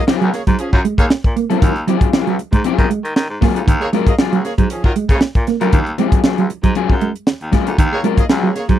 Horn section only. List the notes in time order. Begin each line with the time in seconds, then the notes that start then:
0.21 A#3 G#4 C#5
0.33 A#3 G#4 C#5
0.59 F3 C#4 G#4
0.73 F#3 F4 A#4
0.98 A#3 G#4 C#5
3.81 A#3 G#4 C#5
4.06 A#3 G#4 D#5
4.33 A#3 G#4 C#5
4.44 A#3 G#4 C#5
4.70 F3 C#4 G#4
4.84 F#3 F4 A#4
5.10 A#3 G#4 C#5
7.93 A#3 G#4 C#5
8.18 A#3 G#4 D#5
8.44 A#3 G#4 C#5
8.56 A#3 G#4 C#5